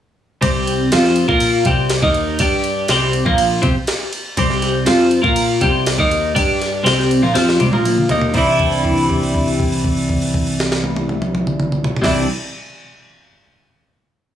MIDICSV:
0, 0, Header, 1, 4, 480
1, 0, Start_track
1, 0, Tempo, 495868
1, 411, Time_signature, 4, 2, 24, 8
1, 13891, End_track
2, 0, Start_track
2, 0, Title_t, "Clean electric guitar"
2, 0, Program_c, 0, 27
2, 401, Note_on_c, 0, 48, 90
2, 408, Note_on_c, 0, 55, 100
2, 411, Note_on_c, 0, 60, 99
2, 876, Note_off_c, 0, 48, 0
2, 879, Note_off_c, 0, 55, 0
2, 881, Note_off_c, 0, 60, 0
2, 889, Note_on_c, 0, 53, 94
2, 891, Note_on_c, 0, 60, 93
2, 900, Note_on_c, 0, 65, 91
2, 1232, Note_off_c, 0, 65, 0
2, 1235, Note_off_c, 0, 60, 0
2, 1239, Note_on_c, 0, 58, 86
2, 1240, Note_off_c, 0, 53, 0
2, 1244, Note_on_c, 0, 65, 94
2, 1255, Note_on_c, 0, 70, 95
2, 1593, Note_off_c, 0, 58, 0
2, 1596, Note_off_c, 0, 65, 0
2, 1602, Note_off_c, 0, 70, 0
2, 1604, Note_on_c, 0, 48, 86
2, 1608, Note_on_c, 0, 55, 92
2, 1615, Note_on_c, 0, 60, 90
2, 1953, Note_off_c, 0, 48, 0
2, 1956, Note_on_c, 0, 51, 87
2, 1957, Note_off_c, 0, 55, 0
2, 1961, Note_off_c, 0, 60, 0
2, 1964, Note_on_c, 0, 58, 89
2, 1969, Note_on_c, 0, 63, 102
2, 2311, Note_off_c, 0, 51, 0
2, 2315, Note_off_c, 0, 58, 0
2, 2317, Note_off_c, 0, 63, 0
2, 2321, Note_on_c, 0, 55, 89
2, 2329, Note_on_c, 0, 62, 107
2, 2338, Note_on_c, 0, 67, 96
2, 2792, Note_off_c, 0, 55, 0
2, 2796, Note_off_c, 0, 62, 0
2, 2798, Note_on_c, 0, 48, 78
2, 2801, Note_off_c, 0, 67, 0
2, 2808, Note_on_c, 0, 55, 92
2, 2811, Note_on_c, 0, 60, 92
2, 3144, Note_off_c, 0, 48, 0
2, 3147, Note_on_c, 0, 46, 82
2, 3152, Note_off_c, 0, 55, 0
2, 3153, Note_off_c, 0, 60, 0
2, 3156, Note_on_c, 0, 53, 97
2, 3157, Note_on_c, 0, 58, 94
2, 3499, Note_off_c, 0, 53, 0
2, 3503, Note_on_c, 0, 60, 85
2, 3505, Note_off_c, 0, 46, 0
2, 3510, Note_off_c, 0, 58, 0
2, 3513, Note_on_c, 0, 67, 97
2, 3623, Note_off_c, 0, 60, 0
2, 3628, Note_off_c, 0, 67, 0
2, 4234, Note_on_c, 0, 48, 85
2, 4243, Note_on_c, 0, 55, 86
2, 4244, Note_on_c, 0, 60, 92
2, 4700, Note_off_c, 0, 60, 0
2, 4701, Note_off_c, 0, 48, 0
2, 4704, Note_on_c, 0, 53, 91
2, 4708, Note_off_c, 0, 55, 0
2, 4712, Note_on_c, 0, 60, 101
2, 4715, Note_on_c, 0, 65, 102
2, 5047, Note_off_c, 0, 60, 0
2, 5051, Note_on_c, 0, 58, 87
2, 5053, Note_off_c, 0, 65, 0
2, 5064, Note_off_c, 0, 53, 0
2, 5064, Note_on_c, 0, 65, 95
2, 5064, Note_on_c, 0, 70, 89
2, 5418, Note_off_c, 0, 58, 0
2, 5425, Note_off_c, 0, 65, 0
2, 5425, Note_off_c, 0, 70, 0
2, 5427, Note_on_c, 0, 48, 100
2, 5437, Note_on_c, 0, 55, 97
2, 5447, Note_on_c, 0, 60, 110
2, 5787, Note_off_c, 0, 48, 0
2, 5792, Note_off_c, 0, 55, 0
2, 5792, Note_on_c, 0, 51, 93
2, 5796, Note_off_c, 0, 60, 0
2, 5797, Note_on_c, 0, 58, 91
2, 5805, Note_on_c, 0, 63, 89
2, 6141, Note_off_c, 0, 58, 0
2, 6143, Note_off_c, 0, 63, 0
2, 6145, Note_on_c, 0, 55, 84
2, 6147, Note_on_c, 0, 62, 98
2, 6150, Note_off_c, 0, 51, 0
2, 6155, Note_on_c, 0, 67, 96
2, 6608, Note_off_c, 0, 55, 0
2, 6612, Note_on_c, 0, 48, 92
2, 6620, Note_on_c, 0, 55, 86
2, 6621, Note_off_c, 0, 62, 0
2, 6625, Note_on_c, 0, 60, 104
2, 6632, Note_off_c, 0, 67, 0
2, 6982, Note_off_c, 0, 48, 0
2, 6986, Note_off_c, 0, 55, 0
2, 6988, Note_off_c, 0, 60, 0
2, 6992, Note_on_c, 0, 46, 82
2, 6998, Note_on_c, 0, 53, 95
2, 7092, Note_off_c, 0, 53, 0
2, 7100, Note_off_c, 0, 46, 0
2, 7104, Note_on_c, 0, 53, 95
2, 7111, Note_on_c, 0, 60, 98
2, 7118, Note_on_c, 0, 65, 93
2, 7348, Note_off_c, 0, 53, 0
2, 7352, Note_off_c, 0, 60, 0
2, 7352, Note_on_c, 0, 48, 88
2, 7356, Note_off_c, 0, 65, 0
2, 7361, Note_on_c, 0, 55, 93
2, 7467, Note_off_c, 0, 48, 0
2, 7471, Note_on_c, 0, 46, 77
2, 7477, Note_off_c, 0, 55, 0
2, 7484, Note_on_c, 0, 58, 86
2, 7488, Note_on_c, 0, 53, 79
2, 7833, Note_off_c, 0, 46, 0
2, 7840, Note_off_c, 0, 58, 0
2, 7840, Note_on_c, 0, 51, 82
2, 7842, Note_off_c, 0, 53, 0
2, 7850, Note_on_c, 0, 58, 85
2, 7853, Note_on_c, 0, 63, 98
2, 8065, Note_off_c, 0, 51, 0
2, 8069, Note_on_c, 0, 48, 84
2, 8075, Note_off_c, 0, 58, 0
2, 8079, Note_on_c, 0, 52, 91
2, 8085, Note_off_c, 0, 63, 0
2, 8092, Note_on_c, 0, 55, 102
2, 8098, Note_on_c, 0, 62, 95
2, 8112, Note_on_c, 0, 64, 101
2, 11583, Note_off_c, 0, 48, 0
2, 11588, Note_off_c, 0, 52, 0
2, 11594, Note_off_c, 0, 55, 0
2, 11597, Note_off_c, 0, 62, 0
2, 11604, Note_off_c, 0, 64, 0
2, 11633, Note_on_c, 0, 48, 88
2, 11647, Note_on_c, 0, 52, 88
2, 11659, Note_on_c, 0, 55, 98
2, 11666, Note_on_c, 0, 62, 90
2, 11677, Note_on_c, 0, 64, 98
2, 11858, Note_off_c, 0, 48, 0
2, 11865, Note_off_c, 0, 52, 0
2, 11871, Note_off_c, 0, 55, 0
2, 11874, Note_off_c, 0, 62, 0
2, 11880, Note_off_c, 0, 64, 0
2, 13891, End_track
3, 0, Start_track
3, 0, Title_t, "Picked electric bass"
3, 0, Program_c, 1, 34
3, 407, Note_on_c, 1, 36, 93
3, 853, Note_off_c, 1, 36, 0
3, 889, Note_on_c, 1, 41, 94
3, 1222, Note_off_c, 1, 41, 0
3, 1245, Note_on_c, 1, 46, 94
3, 1578, Note_off_c, 1, 46, 0
3, 1602, Note_on_c, 1, 36, 95
3, 1936, Note_off_c, 1, 36, 0
3, 1959, Note_on_c, 1, 39, 92
3, 2294, Note_off_c, 1, 39, 0
3, 2323, Note_on_c, 1, 43, 93
3, 2767, Note_off_c, 1, 43, 0
3, 2799, Note_on_c, 1, 36, 92
3, 3133, Note_off_c, 1, 36, 0
3, 3154, Note_on_c, 1, 34, 93
3, 3490, Note_off_c, 1, 34, 0
3, 3514, Note_on_c, 1, 48, 95
3, 3627, Note_off_c, 1, 48, 0
3, 4233, Note_on_c, 1, 36, 91
3, 4682, Note_off_c, 1, 36, 0
3, 4711, Note_on_c, 1, 41, 92
3, 5049, Note_off_c, 1, 41, 0
3, 5067, Note_on_c, 1, 46, 90
3, 5407, Note_off_c, 1, 46, 0
3, 5436, Note_on_c, 1, 36, 101
3, 5773, Note_off_c, 1, 36, 0
3, 5792, Note_on_c, 1, 39, 96
3, 6132, Note_off_c, 1, 39, 0
3, 6157, Note_on_c, 1, 43, 93
3, 6607, Note_off_c, 1, 43, 0
3, 6639, Note_on_c, 1, 36, 90
3, 6977, Note_off_c, 1, 36, 0
3, 6997, Note_on_c, 1, 34, 89
3, 7109, Note_off_c, 1, 34, 0
3, 7115, Note_on_c, 1, 41, 90
3, 7344, Note_off_c, 1, 41, 0
3, 7355, Note_on_c, 1, 36, 95
3, 7466, Note_off_c, 1, 36, 0
3, 7472, Note_on_c, 1, 34, 96
3, 7815, Note_off_c, 1, 34, 0
3, 7841, Note_on_c, 1, 39, 99
3, 8069, Note_off_c, 1, 39, 0
3, 8078, Note_on_c, 1, 36, 96
3, 11549, Note_off_c, 1, 36, 0
3, 11647, Note_on_c, 1, 36, 90
3, 11849, Note_off_c, 1, 36, 0
3, 13891, End_track
4, 0, Start_track
4, 0, Title_t, "Drums"
4, 411, Note_on_c, 9, 51, 99
4, 414, Note_on_c, 9, 36, 113
4, 508, Note_off_c, 9, 51, 0
4, 511, Note_off_c, 9, 36, 0
4, 653, Note_on_c, 9, 51, 73
4, 750, Note_off_c, 9, 51, 0
4, 890, Note_on_c, 9, 51, 103
4, 895, Note_on_c, 9, 38, 116
4, 986, Note_off_c, 9, 51, 0
4, 992, Note_off_c, 9, 38, 0
4, 1014, Note_on_c, 9, 38, 38
4, 1111, Note_off_c, 9, 38, 0
4, 1121, Note_on_c, 9, 51, 74
4, 1217, Note_off_c, 9, 51, 0
4, 1246, Note_on_c, 9, 36, 102
4, 1342, Note_off_c, 9, 36, 0
4, 1358, Note_on_c, 9, 51, 95
4, 1455, Note_off_c, 9, 51, 0
4, 1597, Note_on_c, 9, 51, 78
4, 1602, Note_on_c, 9, 36, 117
4, 1694, Note_off_c, 9, 51, 0
4, 1699, Note_off_c, 9, 36, 0
4, 1835, Note_on_c, 9, 51, 95
4, 1841, Note_on_c, 9, 38, 99
4, 1932, Note_off_c, 9, 51, 0
4, 1937, Note_off_c, 9, 38, 0
4, 1961, Note_on_c, 9, 36, 105
4, 2058, Note_off_c, 9, 36, 0
4, 2075, Note_on_c, 9, 51, 66
4, 2172, Note_off_c, 9, 51, 0
4, 2311, Note_on_c, 9, 51, 101
4, 2319, Note_on_c, 9, 36, 101
4, 2408, Note_off_c, 9, 51, 0
4, 2416, Note_off_c, 9, 36, 0
4, 2553, Note_on_c, 9, 51, 67
4, 2650, Note_off_c, 9, 51, 0
4, 2792, Note_on_c, 9, 51, 93
4, 2798, Note_on_c, 9, 38, 114
4, 2889, Note_off_c, 9, 51, 0
4, 2894, Note_off_c, 9, 38, 0
4, 3033, Note_on_c, 9, 51, 67
4, 3129, Note_off_c, 9, 51, 0
4, 3158, Note_on_c, 9, 36, 101
4, 3254, Note_off_c, 9, 36, 0
4, 3272, Note_on_c, 9, 51, 90
4, 3369, Note_off_c, 9, 51, 0
4, 3511, Note_on_c, 9, 51, 66
4, 3517, Note_on_c, 9, 36, 109
4, 3607, Note_off_c, 9, 51, 0
4, 3614, Note_off_c, 9, 36, 0
4, 3750, Note_on_c, 9, 51, 85
4, 3756, Note_on_c, 9, 38, 108
4, 3847, Note_off_c, 9, 51, 0
4, 3853, Note_off_c, 9, 38, 0
4, 3994, Note_on_c, 9, 51, 62
4, 4091, Note_off_c, 9, 51, 0
4, 4233, Note_on_c, 9, 51, 91
4, 4237, Note_on_c, 9, 36, 111
4, 4330, Note_off_c, 9, 51, 0
4, 4334, Note_off_c, 9, 36, 0
4, 4356, Note_on_c, 9, 38, 32
4, 4453, Note_off_c, 9, 38, 0
4, 4474, Note_on_c, 9, 51, 67
4, 4480, Note_on_c, 9, 38, 36
4, 4571, Note_off_c, 9, 51, 0
4, 4577, Note_off_c, 9, 38, 0
4, 4708, Note_on_c, 9, 51, 96
4, 4714, Note_on_c, 9, 38, 113
4, 4805, Note_off_c, 9, 51, 0
4, 4811, Note_off_c, 9, 38, 0
4, 4946, Note_on_c, 9, 51, 67
4, 5043, Note_off_c, 9, 51, 0
4, 5073, Note_on_c, 9, 36, 103
4, 5170, Note_off_c, 9, 36, 0
4, 5188, Note_on_c, 9, 51, 102
4, 5285, Note_off_c, 9, 51, 0
4, 5432, Note_on_c, 9, 51, 75
4, 5435, Note_on_c, 9, 36, 104
4, 5529, Note_off_c, 9, 51, 0
4, 5532, Note_off_c, 9, 36, 0
4, 5677, Note_on_c, 9, 51, 101
4, 5683, Note_on_c, 9, 38, 106
4, 5774, Note_off_c, 9, 51, 0
4, 5780, Note_off_c, 9, 38, 0
4, 5797, Note_on_c, 9, 36, 101
4, 5893, Note_off_c, 9, 36, 0
4, 5918, Note_on_c, 9, 51, 76
4, 6015, Note_off_c, 9, 51, 0
4, 6159, Note_on_c, 9, 36, 110
4, 6160, Note_on_c, 9, 51, 99
4, 6256, Note_off_c, 9, 36, 0
4, 6257, Note_off_c, 9, 51, 0
4, 6404, Note_on_c, 9, 51, 71
4, 6410, Note_on_c, 9, 38, 34
4, 6501, Note_off_c, 9, 51, 0
4, 6506, Note_off_c, 9, 38, 0
4, 6643, Note_on_c, 9, 51, 91
4, 6648, Note_on_c, 9, 38, 117
4, 6739, Note_off_c, 9, 51, 0
4, 6745, Note_off_c, 9, 38, 0
4, 6774, Note_on_c, 9, 38, 33
4, 6871, Note_off_c, 9, 38, 0
4, 6883, Note_on_c, 9, 51, 74
4, 6980, Note_off_c, 9, 51, 0
4, 7118, Note_on_c, 9, 51, 89
4, 7124, Note_on_c, 9, 38, 63
4, 7215, Note_off_c, 9, 51, 0
4, 7221, Note_off_c, 9, 38, 0
4, 7251, Note_on_c, 9, 38, 60
4, 7348, Note_off_c, 9, 38, 0
4, 7356, Note_on_c, 9, 48, 83
4, 7356, Note_on_c, 9, 51, 73
4, 7453, Note_off_c, 9, 48, 0
4, 7453, Note_off_c, 9, 51, 0
4, 7481, Note_on_c, 9, 48, 65
4, 7578, Note_off_c, 9, 48, 0
4, 7603, Note_on_c, 9, 47, 78
4, 7603, Note_on_c, 9, 51, 81
4, 7700, Note_off_c, 9, 47, 0
4, 7700, Note_off_c, 9, 51, 0
4, 7723, Note_on_c, 9, 45, 77
4, 7820, Note_off_c, 9, 45, 0
4, 7834, Note_on_c, 9, 43, 91
4, 7834, Note_on_c, 9, 51, 67
4, 7931, Note_off_c, 9, 43, 0
4, 7931, Note_off_c, 9, 51, 0
4, 7952, Note_on_c, 9, 43, 94
4, 8049, Note_off_c, 9, 43, 0
4, 8071, Note_on_c, 9, 49, 96
4, 8078, Note_on_c, 9, 36, 106
4, 8168, Note_off_c, 9, 49, 0
4, 8175, Note_off_c, 9, 36, 0
4, 8318, Note_on_c, 9, 49, 44
4, 8321, Note_on_c, 9, 36, 63
4, 8415, Note_off_c, 9, 49, 0
4, 8418, Note_off_c, 9, 36, 0
4, 8444, Note_on_c, 9, 57, 43
4, 8541, Note_off_c, 9, 57, 0
4, 8563, Note_on_c, 9, 36, 66
4, 8565, Note_on_c, 9, 49, 45
4, 8660, Note_off_c, 9, 36, 0
4, 8662, Note_off_c, 9, 49, 0
4, 8689, Note_on_c, 9, 57, 47
4, 8786, Note_off_c, 9, 57, 0
4, 8808, Note_on_c, 9, 36, 60
4, 8813, Note_on_c, 9, 49, 44
4, 8905, Note_off_c, 9, 36, 0
4, 8910, Note_off_c, 9, 49, 0
4, 8937, Note_on_c, 9, 57, 48
4, 9034, Note_off_c, 9, 57, 0
4, 9048, Note_on_c, 9, 36, 66
4, 9054, Note_on_c, 9, 49, 48
4, 9144, Note_off_c, 9, 36, 0
4, 9151, Note_off_c, 9, 49, 0
4, 9174, Note_on_c, 9, 57, 51
4, 9271, Note_off_c, 9, 57, 0
4, 9290, Note_on_c, 9, 36, 67
4, 9295, Note_on_c, 9, 49, 54
4, 9386, Note_off_c, 9, 36, 0
4, 9392, Note_off_c, 9, 49, 0
4, 9414, Note_on_c, 9, 57, 49
4, 9510, Note_off_c, 9, 57, 0
4, 9529, Note_on_c, 9, 36, 64
4, 9531, Note_on_c, 9, 49, 50
4, 9626, Note_off_c, 9, 36, 0
4, 9628, Note_off_c, 9, 49, 0
4, 9652, Note_on_c, 9, 57, 48
4, 9749, Note_off_c, 9, 57, 0
4, 9771, Note_on_c, 9, 36, 63
4, 9771, Note_on_c, 9, 49, 50
4, 9867, Note_off_c, 9, 36, 0
4, 9868, Note_off_c, 9, 49, 0
4, 9891, Note_on_c, 9, 57, 55
4, 9988, Note_off_c, 9, 57, 0
4, 10012, Note_on_c, 9, 36, 64
4, 10012, Note_on_c, 9, 49, 54
4, 10108, Note_off_c, 9, 49, 0
4, 10109, Note_off_c, 9, 36, 0
4, 10133, Note_on_c, 9, 57, 48
4, 10230, Note_off_c, 9, 57, 0
4, 10262, Note_on_c, 9, 38, 90
4, 10359, Note_off_c, 9, 38, 0
4, 10377, Note_on_c, 9, 38, 87
4, 10474, Note_off_c, 9, 38, 0
4, 10492, Note_on_c, 9, 48, 86
4, 10588, Note_off_c, 9, 48, 0
4, 10614, Note_on_c, 9, 48, 95
4, 10711, Note_off_c, 9, 48, 0
4, 10738, Note_on_c, 9, 48, 90
4, 10835, Note_off_c, 9, 48, 0
4, 10859, Note_on_c, 9, 47, 105
4, 10956, Note_off_c, 9, 47, 0
4, 10984, Note_on_c, 9, 47, 106
4, 11080, Note_off_c, 9, 47, 0
4, 11104, Note_on_c, 9, 45, 98
4, 11200, Note_off_c, 9, 45, 0
4, 11225, Note_on_c, 9, 45, 101
4, 11322, Note_off_c, 9, 45, 0
4, 11347, Note_on_c, 9, 45, 91
4, 11444, Note_off_c, 9, 45, 0
4, 11465, Note_on_c, 9, 43, 101
4, 11562, Note_off_c, 9, 43, 0
4, 11582, Note_on_c, 9, 43, 103
4, 11651, Note_on_c, 9, 36, 104
4, 11653, Note_on_c, 9, 49, 109
4, 11659, Note_on_c, 9, 38, 98
4, 11679, Note_off_c, 9, 43, 0
4, 11748, Note_off_c, 9, 36, 0
4, 11750, Note_off_c, 9, 49, 0
4, 11756, Note_off_c, 9, 38, 0
4, 13891, End_track
0, 0, End_of_file